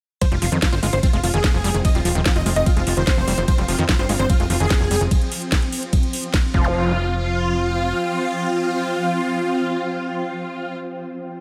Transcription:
0.21 acid bass F3, synth drone F3 C4, ambient pad F4, supersaw synth C5, kick, closed hi-hat, ride
0.32 analog synth bass F1, acid bass G3, supersaw synth F4, closed hi-hat
0.42 analog synth bass F1, acid bass F3, supersaw synth F4, ambient pad C5, open hi-hat
0.52 analog synth bass F2, acid bass D#3, closed hi-hat
0.58 ambient pad G5
0.62 acid bass F3, supersaw synth F4, kick, snare, closed hi-hat, ride
0.72 analog synth bass G1, acid bass F4, supersaw synth C5, closed hi-hat
0.83 analog synth bass G1, acid bass G#3, supersaw synth F4, open hi-hat
0.93 analog synth bass G1, acid bass D#3, supersaw synth C5, closed hi-hat
1.03 acid bass C4, supersaw synth F4, kick, closed hi-hat, ride
1.13 analog synth bass F1, acid bass G#3, supersaw synth F4, closed hi-hat
1.23 analog synth bass F1, acid bass F3, supersaw synth F4, open hi-hat
1.34 analog synth bass F1, acid bass D#3, supersaw synth G#4, closed hi-hat
1.44 acid bass G4, kick, snare, closed hi-hat, ride
1.54 analog synth bass F1, acid bass F3
1.64 analog synth bass F1, acid bass G3, open hi-hat
1.74 analog synth bass F1, acid bass D#3, closed hi-hat
1.85 acid bass F3, supersaw synth D#5, kick, closed hi-hat, ride
1.95 analog synth bass D#1, acid bass G3, supersaw synth F4, closed hi-hat
2.05 analog synth bass D#1, acid bass F3, supersaw synth F4, open hi-hat
2.15 analog synth bass D#1, acid bass D#3, closed hi-hat
2.26 acid bass F3, supersaw synth F4, kick, snare, closed hi-hat, ride
2.36 analog synth bass F1, acid bass F4, supersaw synth D#5, closed hi-hat
2.46 analog synth bass F1, acid bass G#3, supersaw synth F4, open hi-hat
2.56 analog synth bass F1, acid bass D#3, supersaw synth D#5, closed hi-hat
2.66 acid bass C4, supersaw synth F4, kick, closed hi-hat, ride
2.77 analog synth bass F1, acid bass G#3, supersaw synth F4, closed hi-hat
2.87 analog synth bass F1, acid bass F3, supersaw synth F4, open hi-hat
2.97 analog synth bass F1, acid bass D#3, supersaw synth C5, closed hi-hat
3.07 acid bass G4, kick, snare, closed hi-hat, ride
3.17 analog synth bass F1, acid bass F3
3.28 analog synth bass F1, acid bass G3, open hi-hat
3.38 analog synth bass F1, acid bass D#3, closed hi-hat
3.48 acid bass F3, supersaw synth C5, kick, closed hi-hat, ride
3.58 analog synth bass F1, acid bass G3, supersaw synth F4, closed hi-hat
3.68 analog synth bass F1, acid bass F3, supersaw synth F4, open hi-hat
3.79 analog synth bass F2, acid bass D#3, closed hi-hat
3.89 acid bass F3, supersaw synth F4, kick, snare, closed hi-hat, ride
3.99 analog synth bass G1, acid bass F4, supersaw synth C5, closed hi-hat
4.09 analog synth bass G1, acid bass G#3, supersaw synth F4, open hi-hat
4.19 analog synth bass G1, acid bass D#3, supersaw synth C5, closed hi-hat
4.30 acid bass C4, supersaw synth F4, kick, closed hi-hat, ride
4.40 analog synth bass F1, acid bass G#3, supersaw synth F4, closed hi-hat
4.50 analog synth bass F1, acid bass F3, supersaw synth F4, open hi-hat
4.60 analog synth bass F1, acid bass D#3, supersaw synth G#4, closed hi-hat
4.70 acid bass G4, kick, snare, closed hi-hat, ride
4.81 analog synth bass F1, acid bass F3
4.91 analog synth bass F1, acid bass G3, open hi-hat
5.01 analog synth bass F1, acid bass D#3, closed hi-hat
5.11 kick, closed hi-hat, ride
5.21 closed hi-hat
5.32 open hi-hat
5.42 closed hi-hat
5.52 kick, snare, closed hi-hat, ride
5.62 closed hi-hat
5.72 open hi-hat
5.83 closed hi-hat
5.93 kick, closed hi-hat, ride
6.03 closed hi-hat
6.13 open hi-hat
6.34 kick, snare, closed hi-hat, ride
6.54 analog synth bass F1, acid bass F3, synth drone F3 C4, supersaw synth F4, ambient pad F4, kick
6.60 ambient pad C5
6.64 zap
6.87 ambient pad G5

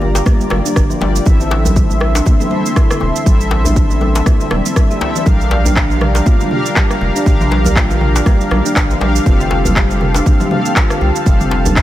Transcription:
Already playing: analog synth bass G1, analog polysynth A#3 F4 G4 D5, analog synth pad G4 F5 A#5
0.01 high conga, djembe tone
0.15 djembe slap, muted conga, shaker
0.26 kalimba G3, kick, cross-stick, high conga, djembe bass, shaker
0.40 kalimba G3, muted conga, shaker
0.50 analog synth bass G1, cross-stick, djembe slap, high conga, low conga
0.65 kalimba D4, shaker
0.76 analog synth bass G1, kalimba D3, kick, cross-stick, muted conga, shaker
0.90 kalimba F3, high conga, shaker
1.01 analog synth bass G1, kalimba G3, analog polysynth A#3 F4 G4 D5, djembe slap, muted conga, djembe tone, high conga
1.16 shaker
1.26 analog synth bass A1, analog polysynth C4 E4 A4 E5, kalimba E4, analog synth pad A4 E5 C6, kick, muted conga, djembe tone, shaker
1.40 kalimba D3, shaker
1.51 djembe slap, muted conga, djembe tone
1.65 high conga, low conga, djembe bass, shaker
1.76 kalimba G3, kick, shaker
1.90 kalimba G3, muted conga, shaker
2.01 cross-stick, djembe tone
2.15 kalimba D4, djembe slap, muted conga, shaker
2.26 kalimba D3, kick, high conga, shaker
2.40 kalimba E3, muted conga, low conga, shaker
2.51 kalimba G3, analog polysynth C4 E4 A4 E5, high conga
2.66 shaker
2.76 kalimba E4, kick, cross-stick, muted conga, shaker
2.90 kalimba D3, cross-stick, high conga, shaker
3.00 analog synth bass E1, muted conga, djembe tone
3.16 shaker
3.26 analog synth bass A1, kalimba G3, analog polysynth C4 E4 A4 E5, analog synth pad D5, kick, muted conga, shaker
3.40 kalimba G3, shaker
3.51 djembe slap, muted conga, djembe tone
3.65 kalimba D4, high conga, djembe bass, low conga, shaker
3.76 kalimba D3, kick, shaker
3.90 kalimba E3, muted conga, shaker
4.01 kalimba G3, djembe tone, high conga
4.15 djembe slap, muted conga, shaker
4.26 kalimba E4, kick, cross-stick, high conga, djembe bass, shaker
4.40 kalimba D3, muted conga, shaker
4.50 analog synth bass E1, cross-stick, djembe slap, high conga, low conga
4.66 shaker
4.76 kalimba G3, kick, cross-stick, muted conga, shaker
4.91 kalimba G4, high conga, shaker
5.01 analog polysynth C4 E4 A4 E5, djembe slap, muted conga, high conga, djembe tone
5.15 kalimba E3, shaker
5.26 analog synth bass A#1, kalimba G3, analog polysynth D4 G4 A#4 F5, analog synth pad G4 A#5, kick, muted conga, djembe tone, shaker
5.40 kalimba G3, shaker
5.51 djembe slap, muted conga, djembe tone
5.64 kalimba D4, high conga, djembe bass, low conga, shaker
5.76 kalimba D3, kick, clap, shaker
5.90 kalimba F3, muted conga, shaker
6.01 kalimba G3, cross-stick, mid tom, djembe tone
6.15 djembe slap, muted conga, shaker
6.26 kalimba F4, kick, high conga, shaker
6.40 kalimba D3, muted conga, low conga, shaker
6.51 analog polysynth D4 G4 A#4 F5, mid tom, high conga
6.66 shaker
6.76 kalimba G3, kick, cross-stick, clap, shaker
6.91 kalimba G3, cross-stick, high conga, shaker
7.01 analog synth bass F1, muted conga, djembe tone
7.16 kalimba D4, shaker
7.26 analog synth bass A#1, kalimba D3, analog polysynth D4 G4 A#4 F5, kick, muted conga, shaker
7.41 kalimba F3, mid tom, shaker
7.51 kalimba G3, muted conga, djembe slap, djembe tone
7.65 high conga, low conga, djembe bass, shaker
7.76 kalimba F4, kick, clap, shaker
7.90 kalimba D3, muted conga, shaker
8.01 mid tom, djembe tone, high conga
8.15 muted conga, djembe slap, shaker
8.26 kalimba G3, kick, cross-stick, high conga, djembe bass, shaker
8.40 kalimba G3, muted conga, shaker
8.51 analog synth bass A#1, cross-stick, djembe slap, high conga, low conga
8.65 kalimba D4, shaker
8.76 analog synth bass A#1, kalimba D3, kick, cross-stick, clap, shaker
8.90 kalimba F3, high conga, shaker
9.01 analog synth bass A#1, kalimba G3, analog polysynth D4 G4 A#4 F5, djembe slap, muted conga, djembe tone, high conga
9.16 shaker
9.26 analog synth bass F1, analog polysynth C4 G4 A4 F5, kalimba F4, analog synth pad F5 A5, kick, muted conga, djembe tone, shaker
9.40 kalimba D3, shaker
9.50 djembe slap, muted conga, djembe tone
9.65 high conga, low conga, djembe bass, shaker
9.76 kalimba G3, kick, clap, shaker
9.90 kalimba G3, muted conga, shaker
10.01 mid tom, djembe tone
10.14 kalimba D4, djembe slap, muted conga, shaker
10.26 kalimba D3, kick, high conga, shaker
10.40 kalimba F3, muted conga, low conga, shaker
10.51 kalimba G3, analog polysynth C4 G4 A4 F5, mid tom, high conga
10.65 shaker
10.76 kalimba F4, kick, cross-stick, clap, muted conga, shaker
10.90 kalimba D3, cross-stick, high conga, shaker
11.01 analog synth bass C2, muted conga, djembe tone
11.16 shaker
11.26 analog synth bass F1, kalimba G3, analog polysynth C4 G4 A4 F5, kick, muted conga, shaker
11.40 kalimba G3, mid tom, shaker
11.51 muted conga, djembe slap, djembe tone
11.65 kalimba D4, high conga, low conga, djembe bass, shaker
11.76 kalimba D3, kick, clap, shaker

